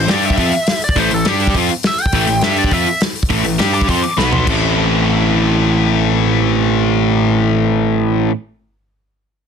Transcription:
0.00 0.10 C5 medium
0.08 0.35 G2 medium
0.08 0.37 G3 medium
0.08 0.37 D4 medium
0.08 0.37 G4 medium
0.08 0.25 D5 medium
0.08 snare loud
0.08 open hi-hat medium
0.23 0.81 E5 loud
0.23 open hi-hat medium
0.30 kick medium
0.37 0.51 F2 medium
0.37 0.52 F3 medium
0.37 0.52 C4 medium
0.37 0.52 F4 loud
0.37 kick loud
0.37 open hi-hat medium
0.52 open hi-hat medium
0.67 snare loud
0.67 open hi-hat medium
0.82 0.99 D5 medium
0.82 open hi-hat medium
0.89 kick medium
0.96 1.10 A1 medium
0.96 1.10 A2 medium
0.96 1.10 E3 loud
0.96 1.11 A3 loud
0.96 1.14 C5 medium
0.96 kick loud
0.96 open hi-hat medium
1.11 1.24 A1 medium
1.11 1.23 A2 medium
1.11 1.23 E3 medium
1.11 1.29 A4 medium
1.11 open hi-hat medium
1.25 1.52 G2 medium
1.25 1.54 G3 medium
1.25 1.54 D4 loud
1.25 1.55 G4 loud
1.25 snare loud
1.25 open hi-hat medium
1.40 open hi-hat medium
1.47 kick medium
1.54 1.68 F2 medium
1.54 1.69 F3 medium
1.54 1.69 C4 medium
1.54 1.69 F4 loud
1.54 kick loud
1.54 open hi-hat medium
1.69 open hi-hat medium
1.83 snare loud
1.83 open hi-hat medium
1.87 2.02 E5 loud
1.99 2.43 G5 medium
1.99 open hi-hat medium
2.06 kick medium
2.13 2.27 A1 medium
2.13 2.26 A2 loud
2.13 2.26 E3 medium
2.13 2.28 A3 loud
2.13 kick medium
2.13 open hi-hat medium
2.27 2.41 A1 medium
2.27 2.39 A2 medium
2.27 2.39 E3 medium
2.27 open hi-hat medium
2.41 2.69 G2 medium
2.41 2.71 G3 medium
2.41 2.71 D4 medium
2.41 2.72 G4 loud
2.41 2.58 E5 loud
2.41 snare loud
2.41 open hi-hat medium
2.57 2.73 D5 medium
2.57 open hi-hat medium
2.64 kick medium
2.71 2.85 F2 medium
2.71 2.86 F3 loud
2.71 2.86 C4 loud
2.71 2.86 F4 loud
2.71 3.00 E5 loud
2.71 kick loud
2.71 open hi-hat medium
2.87 open hi-hat medium
3.01 snare loud
3.01 open hi-hat medium
3.16 open hi-hat medium
3.23 kick medium
3.29 3.44 A1 medium
3.29 3.43 A2 medium
3.29 3.44 E3 medium
3.29 3.44 A3 medium
3.29 kick loud
3.29 open hi-hat medium
3.44 3.58 A1 medium
3.44 3.56 A2 medium
3.44 3.56 E3 medium
3.44 open hi-hat medium
3.58 3.87 G2 medium
3.58 3.87 G3 medium
3.58 3.88 D4 medium
3.58 3.88 G4 loud
3.58 snare loud
3.58 open hi-hat medium
3.74 3.88 D6 medium
3.74 open hi-hat medium
3.81 kick medium
3.87 4.02 F2 medium
3.87 4.02 F3 medium
3.87 4.02 C4 medium
3.87 4.03 F4 loud
3.87 4.03 C6 medium
3.87 kick medium
3.87 open hi-hat medium
4.03 4.18 D6 medium
4.03 open hi-hat medium
4.18 4.45 B1 medium
4.18 4.47 B2 medium
4.18 4.47 F#3 medium
4.18 4.47 B3 loud
4.18 4.32 B5 medium
4.18 snare medium
4.33 4.47 C6 medium
4.33 floor tom medium
4.46 8.28 A1 medium
4.46 8.31 A2 medium
4.46 8.32 E3 medium
4.46 8.32 A3 medium
4.46 8.33 C4 loud
4.46 8.33 E4 loud
4.46 kick loud
4.46 crash medium

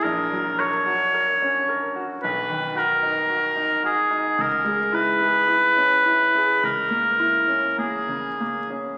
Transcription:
0.03 2.19 A#1 medium
0.03 0.61 A#4 medium
0.32 0.76 F#3 soft
0.59 1.03 A#4 soft
0.59 1.96 C#5 medium
0.86 1.30 F#4 soft
1.14 1.58 A#4 soft
1.42 1.85 C#4 soft
1.69 2.12 A#4 soft
1.96 2.23 F#4 soft
2.23 4.36 B1 soft
2.23 2.79 B4 medium
2.50 2.92 D#3 soft
2.75 3.18 F#4 soft
2.75 3.85 A#4 medium
3.03 3.46 D#4 soft
3.30 3.73 F#4 soft
3.56 4.00 D#4 soft
3.83 4.28 F#4 soft
3.83 4.43 G#4 medium
4.11 4.38 D#4 soft
4.38 6.59 C#2 soft
4.38 4.95 A#4 medium
4.65 5.10 G#3 soft
4.92 5.38 E4 soft
4.92 6.65 B4 medium
5.20 5.66 G#4 soft
5.48 5.94 E4 soft
5.76 6.23 C#4 soft
6.05 6.51 E4 soft
6.35 6.64 G#4 soft
6.63 8.98 C#2 soft
6.63 7.78 A#4 medium
6.90 7.37 A#3 soft
7.19 7.67 E4 soft
7.48 7.96 C#4 soft
7.78 8.27 A#3 soft
7.78 8.70 G#4 medium
8.09 8.59 C#3 soft
8.41 8.91 A#3 soft
8.70 8.98 C#4 soft

